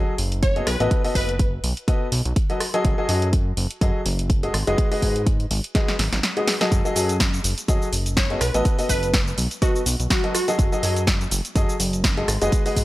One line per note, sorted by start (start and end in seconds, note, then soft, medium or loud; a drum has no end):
0.00 0.12 F#3 medium
0.00 0.12 F#4 medium
0.00 0.12 G#4 medium
0.00 0.12 A4 medium
0.00 0.12 D#5 loud
0.18 0.62 F#1 medium
0.18 open hi-hat loud
0.32 closed hi-hat soft
0.43 0.61 C#5 medium
0.43 kick loud
0.43 closed hi-hat medium
0.56 0.66 B3 medium
0.56 0.66 F#4 medium
0.56 0.66 G#4 medium
0.56 0.66 A4 medium
0.56 0.66 D#5 medium
0.56 closed hi-hat soft
0.67 0.77 B1 medium
0.67 0.85 B4 medium
0.67 cross-stick medium
0.67 open hi-hat loud
0.80 0.88 A1 medium
0.80 1.00 B3 medium
0.80 1.00 F#4 medium
0.80 1.00 A4 medium
0.80 1.00 B4 medium
0.80 1.00 D#5 loud
0.80 closed hi-hat soft
0.91 kick loud
0.91 closed hi-hat medium
1.04 1.14 B3 medium
1.04 1.14 F#4 medium
1.04 1.14 A4 medium
1.04 1.14 B4 medium
1.04 1.14 D#5 loud
1.04 open hi-hat medium
1.15 1.59 F#1 medium
1.15 1.33 B3 medium
1.15 1.33 F#4 medium
1.15 1.33 A4 medium
1.15 1.33 B4 medium
1.15 kick medium
1.15 open hi-hat loud
1.29 closed hi-hat medium
1.39 kick loud
1.39 closed hi-hat medium
1.64 1.73 B1 loud
1.64 open hi-hat loud
1.77 closed hi-hat soft
1.88 2.06 B3 medium
1.88 2.05 F#4 medium
1.88 2.05 A4 medium
1.88 2.06 B4 medium
1.88 2.05 D#5 medium
1.88 kick loud
1.88 closed hi-hat medium
2.12 2.22 B1 loud
2.12 open hi-hat loud
2.25 2.33 B1 medium
2.25 closed hi-hat soft
2.36 kick loud
2.36 closed hi-hat medium
2.50 2.59 F#3 medium
2.50 2.59 F#4 medium
2.50 2.59 A4 medium
2.50 2.59 B4 medium
2.50 2.59 D#5 medium
2.50 closed hi-hat soft
2.60 cross-stick medium
2.60 open hi-hat loud
2.74 2.94 F#3 medium
2.74 2.94 F#4 medium
2.74 2.94 G#4 medium
2.74 2.94 A4 medium
2.74 2.94 D#5 loud
2.74 closed hi-hat medium
2.85 2.94 F#1 medium
2.85 kick loud
2.85 closed hi-hat medium
2.98 3.07 F#3 medium
2.98 3.07 F#4 medium
2.98 3.07 G#4 medium
2.98 3.07 A4 medium
2.98 3.07 D#5 loud
3.09 3.53 F#2 medium
3.09 3.26 F#3 medium
3.09 3.26 F#4 medium
3.09 3.26 G#4 medium
3.09 3.26 A4 medium
3.09 3.26 D#5 medium
3.09 open hi-hat loud
3.22 closed hi-hat medium
3.33 kick loud
3.33 closed hi-hat medium
3.57 3.67 F#1 medium
3.57 open hi-hat medium
3.71 closed hi-hat medium
3.81 3.91 F#2 medium
3.81 3.99 F#3 medium
3.81 3.99 F#4 medium
3.81 3.99 G#4 medium
3.81 3.99 A4 medium
3.81 3.99 D#5 loud
3.81 kick loud
3.81 closed hi-hat medium
4.06 4.49 F#1 medium
4.06 open hi-hat loud
4.19 closed hi-hat medium
4.30 kick loud
4.30 closed hi-hat medium
4.43 4.53 G#3 medium
4.43 4.53 F#4 medium
4.43 4.53 G#4 medium
4.43 4.53 A4 medium
4.43 4.53 D#5 medium
4.43 closed hi-hat soft
4.54 4.64 G#1 loud
4.54 cross-stick medium
4.54 open hi-hat loud
4.67 4.75 F#1 medium
4.67 4.88 G#3 loud
4.67 4.88 F#4 medium
4.67 4.88 G#4 medium
4.67 4.88 B4 medium
4.67 4.88 D#5 loud
4.67 closed hi-hat medium
4.78 kick loud
4.78 closed hi-hat medium
4.91 5.01 G#3 loud
4.91 5.01 F#4 medium
4.91 5.01 G#4 medium
4.91 5.01 B4 medium
4.91 5.01 D#5 loud
4.91 open hi-hat medium
5.02 5.46 G#2 medium
5.02 5.20 G#3 medium
5.02 5.20 G#4 medium
5.02 5.20 B4 medium
5.02 kick medium
5.02 open hi-hat loud
5.16 closed hi-hat medium
5.26 kick loud
5.26 closed hi-hat medium
5.40 closed hi-hat soft
5.51 5.61 G#1 medium
5.51 open hi-hat loud
5.64 closed hi-hat medium
5.75 5.93 G#3 medium
5.75 5.93 F#4 medium
5.75 5.93 G#4 medium
5.75 5.93 B4 medium
5.75 5.93 D#5 loud
5.75 kick loud
5.75 snare medium
5.75 closed hi-hat medium
5.88 snare medium
5.88 closed hi-hat soft
5.99 6.09 G#1 loud
5.99 snare medium
5.99 open hi-hat loud
6.13 6.20 G#1 medium
6.13 snare medium
6.13 closed hi-hat medium
6.23 snare medium
6.23 closed hi-hat medium
6.37 6.53 G#3 medium
6.37 6.53 F#4 medium
6.37 6.53 G#4 medium
6.37 6.53 B4 medium
6.37 6.53 D#5 medium
6.37 closed hi-hat soft
6.47 snare medium
6.47 open hi-hat loud
6.61 6.81 F#3 medium
6.61 6.81 F#4 medium
6.61 6.81 G#4 medium
6.61 6.81 A4 medium
6.61 6.81 D#5 loud
6.61 snare medium
6.61 closed hi-hat medium
6.72 6.82 F#1 medium
6.72 kick loud
6.72 closed hi-hat medium
6.72 cabasa soft
6.85 6.94 F#3 medium
6.85 6.94 F#4 medium
6.85 6.94 G#4 medium
6.85 6.94 A4 medium
6.85 6.94 D#5 loud
6.85 cabasa soft
6.96 7.40 F#2 medium
6.96 7.14 F#3 medium
6.96 7.14 F#4 medium
6.96 7.14 G#4 medium
6.96 7.14 A4 medium
6.96 7.14 D#5 medium
6.96 open hi-hat loud
6.96 cabasa medium
7.09 closed hi-hat medium
7.09 cabasa soft
7.20 kick loud
7.20 snare loud
7.20 closed hi-hat medium
7.20 cabasa soft
7.34 cabasa soft
7.44 7.54 F#1 loud
7.44 open hi-hat loud
7.44 cabasa medium
7.58 closed hi-hat medium
7.58 cabasa soft
7.68 7.78 F#2 medium
7.68 7.86 F#3 medium
7.68 7.86 F#4 medium
7.68 7.86 G#4 medium
7.68 7.86 A4 medium
7.68 7.86 D#5 loud
7.68 kick loud
7.68 closed hi-hat medium
7.68 cabasa soft
7.82 cabasa soft
7.93 8.36 F#1 medium
7.93 open hi-hat loud
7.93 cabasa medium
8.06 closed hi-hat medium
8.06 cabasa soft
8.17 8.35 C#5 medium
8.17 kick loud
8.17 snare loud
8.17 closed hi-hat medium
8.17 cabasa soft
8.30 8.40 B3 medium
8.30 8.40 F#4 medium
8.30 8.40 G#4 medium
8.30 8.40 A4 medium
8.30 8.40 D#5 medium
8.30 closed hi-hat soft
8.41 8.51 B1 loud
8.41 8.59 B4 loud
8.41 cross-stick medium
8.41 open hi-hat loud
8.41 cabasa medium
8.54 8.62 A1 medium
8.54 8.75 B3 medium
8.54 8.75 F#4 medium
8.54 8.75 A4 medium
8.54 8.75 B4 medium
8.54 8.75 D#5 loud
8.54 closed hi-hat medium
8.54 cabasa soft
8.65 kick loud
8.65 closed hi-hat medium
8.65 cabasa soft
8.79 8.88 B3 medium
8.79 8.88 F#4 medium
8.79 8.88 A4 medium
8.79 8.88 B4 medium
8.79 8.88 D#5 loud
8.79 open hi-hat medium
8.79 cabasa soft
8.89 9.33 F#1 medium
8.89 9.07 B3 medium
8.89 9.07 F#4 medium
8.89 9.07 A4 medium
8.89 9.07 B4 medium
8.89 9.08 B4 medium
8.89 9.07 D#5 medium
8.89 kick medium
8.89 open hi-hat loud
8.89 cabasa medium
9.03 closed hi-hat medium
9.03 cabasa soft
9.14 kick loud
9.14 snare loud
9.14 closed hi-hat medium
9.14 cabasa soft
9.27 cabasa soft
9.38 9.48 B1 medium
9.38 open hi-hat loud
9.38 cabasa medium
9.51 closed hi-hat medium
9.51 cabasa soft
9.62 9.80 B3 medium
9.62 10.08 F#4 medium
9.62 9.80 F#4 medium
9.62 9.80 A4 medium
9.62 9.80 B4 medium
9.62 9.80 D#5 loud
9.62 kick loud
9.62 closed hi-hat medium
9.62 cabasa soft
9.76 cabasa soft
9.86 9.96 B1 loud
9.86 open hi-hat loud
9.86 cabasa medium
10.00 10.08 B1 medium
10.00 closed hi-hat medium
10.00 cabasa soft
10.10 10.29 F#4 medium
10.10 kick loud
10.10 snare loud
10.10 closed hi-hat medium
10.10 cabasa soft
10.24 10.33 F#3 medium
10.24 10.33 F#4 medium
10.24 10.33 A4 medium
10.24 10.33 B4 medium
10.24 10.33 D#5 medium
10.24 closed hi-hat soft
10.35 10.83 F#4 medium
10.35 cross-stick medium
10.35 open hi-hat loud
10.35 cabasa medium
10.48 10.68 F#3 medium
10.48 10.68 F#4 medium
10.48 10.68 G#4 medium
10.48 10.68 A4 medium
10.48 10.68 D#5 loud
10.48 closed hi-hat soft
10.48 cabasa soft
10.59 10.69 F#1 loud
10.59 kick loud
10.59 closed hi-hat medium
10.59 cabasa soft
10.72 10.81 F#3 loud
10.72 10.81 F#4 medium
10.72 10.81 G#4 medium
10.72 10.81 A4 medium
10.72 10.81 D#5 loud
10.72 cabasa soft
10.83 11.27 F#2 medium
10.83 11.01 F#3 medium
10.83 11.01 F#4 medium
10.83 11.01 G#4 medium
10.83 11.01 A4 medium
10.83 11.01 D#5 medium
10.83 open hi-hat loud
10.83 cabasa medium
10.96 closed hi-hat soft
10.96 cabasa soft
11.07 kick loud
11.07 snare loud
11.07 closed hi-hat medium
11.07 cabasa soft
11.21 cabasa soft
11.31 11.41 F#1 loud
11.31 open hi-hat loud
11.31 cabasa medium
11.45 closed hi-hat soft
11.45 cabasa soft
11.56 11.65 F#2 medium
11.56 11.73 F#3 medium
11.56 11.73 F#4 medium
11.56 11.73 G#4 medium
11.56 11.73 A4 medium
11.56 11.73 D#5 loud
11.56 kick loud
11.56 closed hi-hat medium
11.56 cabasa soft
11.69 cabasa soft
11.80 12.24 F#1 medium
11.80 open hi-hat loud
11.80 cabasa medium
11.93 closed hi-hat soft
11.93 cabasa soft
12.04 kick loud
12.04 snare loud
12.04 closed hi-hat medium
12.04 cabasa soft
12.17 12.27 G#3 medium
12.17 12.27 F#4 medium
12.17 12.27 G#4 medium
12.17 12.27 A4 medium
12.17 12.27 D#5 medium
12.17 closed hi-hat soft
12.28 12.38 G#1 medium
12.28 cross-stick medium
12.28 open hi-hat loud
12.28 cabasa medium
12.42 12.49 F#1 medium
12.42 12.62 G#3 loud
12.42 12.62 F#4 medium
12.42 12.62 G#4 medium
12.42 12.62 B4 medium
12.42 12.62 D#5 loud
12.42 closed hi-hat medium
12.42 cabasa soft
12.52 kick loud
12.52 closed hi-hat medium
12.52 cabasa soft
12.66 12.75 G#3 medium
12.66 12.75 F#4 medium
12.66 12.75 G#4 medium
12.66 12.75 B4 medium
12.66 12.75 D#5 loud
12.66 open hi-hat medium
12.66 cabasa soft
12.76 12.84 G#2 medium
12.76 12.84 G#3 medium
12.76 12.84 F#4 medium
12.76 12.84 G#4 medium
12.76 12.84 B4 medium
12.76 12.84 D#5 medium
12.76 kick medium
12.76 open hi-hat loud
12.76 cabasa medium